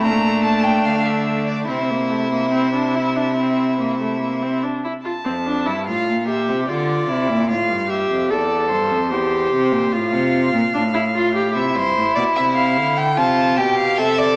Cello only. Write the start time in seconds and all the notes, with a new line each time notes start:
0.02 A#2
0.85 D3
1.69 C3
5.25 F2
5.67 G2
5.87 A2
6.08 A#2
6.48 C3
6.69 D3
7.08 C3
7.29 A#2
7.49 A2
7.69 G2
8.10 F2
8.30 E2
8.71 G2
8.91 F2
9.11 E2
9.52 C3
9.72 A#2
9.92 A2
10.13 C3
10.53 A#2
10.74 A2
11.55 C3
11.75 G2
11.96 A2
12.16 B2
12.37 C3
12.76 D3
13.17 C3
13.58 B2
13.98 C3